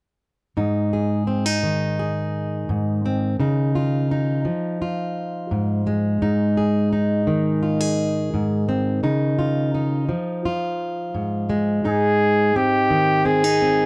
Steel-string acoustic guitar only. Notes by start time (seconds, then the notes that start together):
0.57 G#2 D#4
0.93 G#4
1.27 C4
1.46 D#4
1.63 D#3
1.99 G#4
2.69 G#2
3.06 C4
3.40 C#3 D#4
3.75 F4
4.11 D#4
4.45 F3
4.82 F4
5.51 G#2
5.87 G#3
6.22 G#2 D#4
6.57 G#4
6.93 D#4
7.27 D#3
7.63 F4
7.81 G#4
8.34 G#2
8.69 C4
9.03 C#3 D#4
9.39 F4
9.75 D#4
10.09 F3
10.45 F4
11.14 G#2
11.50 G#3
11.84 G#2 D#4
12.56 C4
12.90 D#3
13.25 C4
13.44 D#4
13.62 C4